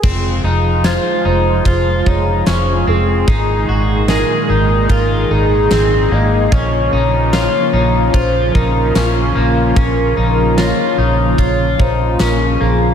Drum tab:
CC |x-------|--------|--------|--------|
RD |--x-x-x-|x-x-x-x-|x-x-x-x-|x-x-x-x-|
TB |--x---x-|--x---x-|--x---x-|--x---x-|
SD |--o---o-|--o---o-|--o---o-|--o---o-|
BD |o---oo--|o---o---|o---oo--|o---oo--|